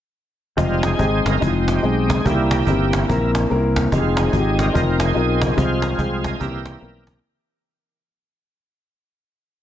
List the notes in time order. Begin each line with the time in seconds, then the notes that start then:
0.57 F1 G3 G#3 C4 D#4 F4, cajon bass
0.83 C4 D#4 G#4, cajon slap
0.99 G#1 G#3 C4 D#4 G4, cajon bass
1.05 G#4
1.25 G1 A#4, cajon slap
1.40 F1 G#3 C4 D#4 E4 G#4, cajon bass
1.47 F4
1.68 C4 D#4 G4, cajon slap
1.82 B1 G#3 C4 D#4 G#4, cajon slap
2.10 G#4, cajon bass, cajon slap
2.24 C2 C3 G3 A#3 C4 C#4 E4 G4, cajon bass
2.31 E4
2.51 A#3 E4 G4, cajon slap
2.67 G1 A#3 C4 D#4 G4, cajon bass
2.73 E4
2.93 cajon slap
3.09 A#1 A#3 C4 E4 A#4, cajon bass
3.35 cajon slap
3.50 C2 A#3 C4 C#4 A#4, cajon slap
3.56 E4
3.76 cajon bass, cajon slap
3.92 F1 G#3 C4 D#4 F4 G4, cajon bass
3.98 G#4
4.17 C4 D#4 G#4, cajon slap
4.32 G#1 C4 D#4 F4 F#4, cajon bass
4.39 G4
4.59 G3 G#3 D#4 A#4, cajon slap
4.72 F1 C4 D#4 F4 A#4, cajon bass
5.00 C4 D#4 G#4, cajon slap
5.15 B1 C4 D#4 F4 A#4, cajon slap
5.42 cajon bass, cajon slap
5.56 C2 C3 F3 G#3 C4 F4 G#4 C5, cajon bass
5.82 A#4, cajon slap
5.98 C2 G#3 C4 F4 G#4 C5, cajon bass
6.24 D#5, cajon bass, cajon slap
6.39 C2 C3 E3 G3 A#3 C4 C#4 G4 A#4 E5, cajon bass
6.46 E4
6.66 cajon slap
6.80 B1 A#3 C4 E4 A#4, cajon slap
7.07 cajon bass, cajon slap